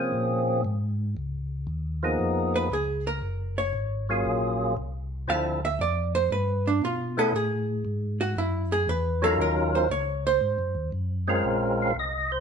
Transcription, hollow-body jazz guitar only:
2.56 B4
2.73 G#4
3.07 A#4
3.58 C#5
5.30 F5
5.65 E5
5.81 D5
6.15 C5
6.32 B4
6.67 D4
6.85 F4
7.19 A4
7.36 G#4
8.21 F#4
8.38 E4
8.72 G#4
8.89 B4
9.24 A4
9.41 A#4
9.75 C5
9.91 C#5
10.27 C5

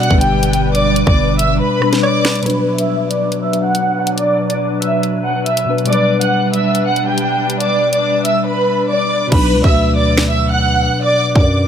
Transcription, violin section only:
0.00 F#5 F#6
0.21 G4 G5
0.74 D5 D6
1.07 D5 D6
1.39 E5 E6
1.60 B4 B5
2.03 D5 D6
2.46 B4 B5
2.78 E5 E6
3.10 D5 D6
3.43 E5 E6
3.64 F#5 F#6
4.18 D5 D6
4.50 D5 D6
4.82 E5 E6
5.25 F#5 F#6
5.46 E5 E6
5.89 D5 D6
6.21 F#5 F#6
6.53 E5 E6
6.85 F#5 F#6
7.07 G4 G5
7.60 D5 D6
7.92 D5 D6
8.25 E5 E6
8.46 B4 B5
8.89 D5 D6
9.32 B4 B5
9.64 E5 E6
9.96 D5 D6
10.29 E5 E6
10.49 F#5 F#6
11.03 D5 D6
11.36 D5 D6

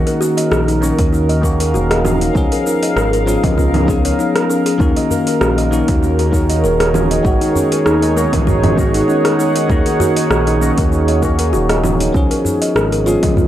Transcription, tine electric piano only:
Already playing: D#3 A#3 C#4 F#4
0.81 D#3 A#3 C#4 F#4
1.41 D#3 A#3 C#4 F#4
2.33 F3 B3 C#4 G#4
3.26 F3 B3 C#4 G#4
3.86 F3 B3 C#4
3.90 G#4
4.78 D#3 A#3 C#4 F#4
5.71 D#3 A#3 C#4 F#4
6.31 D#3 A#3 C#4
6.35 F#4
7.23 D#3 G#3 B3 F#4
8.15 D#3 G#3 B3 F#4
8.76 D#3 G#3 B3
8.80 F#4
9.68 D#3 A#3 C#4 F#4
10.60 D#3 A#3 C#4 F#4
11.21 D#3 A#3 C#4 F#4
12.12 F3 B3 C#4
12.17 G#4
13.06 F3 B3 C#4 G#4

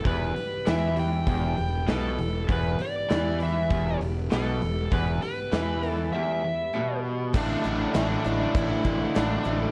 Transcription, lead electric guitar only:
0.07 B4
0.69 E5
0.99 G5
1.91 A4
2.52 B4
2.82 D5
3.43 E5
4.34 A4
4.94 B4
5.23 B4
5.90 A4
6.13 E5
7.37 D4
7.97 D4
8.56 E4
9.17 D4

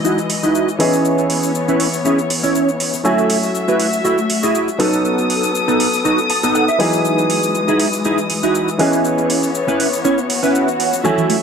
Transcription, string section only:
Already playing: E3 G#3 D#5
0.80 E3 B3 C#5
3.05 A3 F#4 E5
4.80 B3 A4 D#6
6.80 E3 G#3
8.79 B3 C#5
11.05 A3 F#4 E5

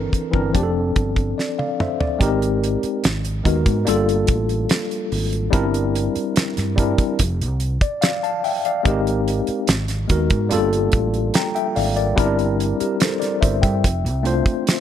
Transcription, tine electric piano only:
Already playing: E3 C4 D4 A4 A#4
0.31 E3 C4 D4 A#4
0.53 F3 C4 D4
0.57 G4
0.63 A4
1.38 D5
1.59 D5 F5
1.81 C5 E5
2.00 D5
2.19 G#3 C4 D#4 G4 A#4
3.44 G#3 B3 D#4 F#4 A#4
3.85 G3 A#3 D4 F4
3.89 A4
5.50 G3 C4 D4 E4 A#4
6.76 G3 C4 D4 E4 A#4
7.82 D5
8.01 D5 F5
8.23 F5 A5
8.44 E5 G5
8.65 D5 F5
8.83 G#3 C4 D#4 G4 A#4
10.08 G#3 B3 D#4 F#4 A#4
10.49 G3 A#3 D4 F4 A4
11.34 G5 A#5
11.55 E5 G5
11.75 D5 F5
11.96 A#4 D5
12.16 G3 C4 D4 E4 A#4
12.80 G4 A#4
13.01 A4 C5
13.20 A#4 D5
13.41 C5 E5
13.62 E5 G5
14.23 A3 C4 D4 F4 C5

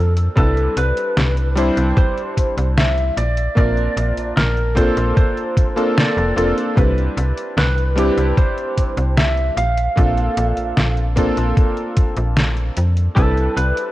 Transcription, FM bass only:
Already playing: F2
0.37 C2
0.77 C2
1.17 C2
1.77 C2
2.57 C2
3.17 A#1
3.57 A#1
3.97 A#1
4.17 A#1
4.37 A#1
4.97 A#1
6.17 F1
6.37 F1
6.77 C2
7.17 C2
7.57 C2
8.17 C2
8.97 C2
9.57 A#1
9.97 A#1
10.37 A#1
10.57 A#1
10.77 A#1
11.37 A#1
12.17 A#1
12.77 F2
13.17 C2
13.57 C2

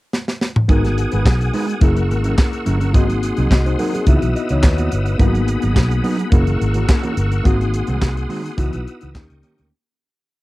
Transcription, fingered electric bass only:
0.69 G#1
1.13 G#1
1.26 B1
1.82 F#1
2.11 G#1
2.67 G1
2.95 G#1
3.38 C2
3.51 C2
4.07 C#2
4.23 B1
4.50 C#2
4.64 D#2
4.92 G1
5.20 G#1
5.63 G#1
5.77 B1
6.32 F#1
6.61 G#1
7.17 G1
7.46 G#1
7.88 C2
8.02 C2
8.59 C#2
8.74 B1
9.03 C#2
9.15 D#2
9.30 C#2
9.60 D2

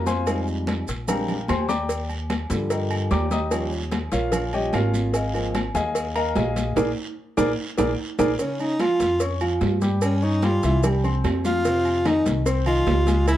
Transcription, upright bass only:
Already playing: F2
0.88 A#1
1.49 D#2
2.50 G2
3.11 D#2
4.12 A#1
4.73 G#1
5.75 D#2
6.36 A#1
6.77 A#1
7.38 A#1
7.78 A#1
8.19 A#1
9.00 F2
9.61 G2
10.63 C2
11.24 F2
12.26 C2
12.87 C#2

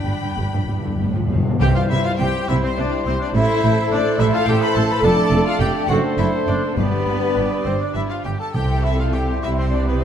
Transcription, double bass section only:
0.06 G1
0.37 G1
0.68 G1
0.99 G1
1.30 G1
1.60 C2
1.90 C2
2.20 C2
2.49 C2
2.78 C2
3.06 C2
3.35 A1
3.63 A1
3.92 A1
4.20 A1
4.47 A1
4.75 A1
5.03 F1
5.31 F1
5.60 F1
5.89 F#1
6.18 F#1
6.48 F#1
6.77 G1
7.06 G1
7.36 G1
7.65 G1
7.95 G1
8.25 G1
8.55 C2
9.43 C2

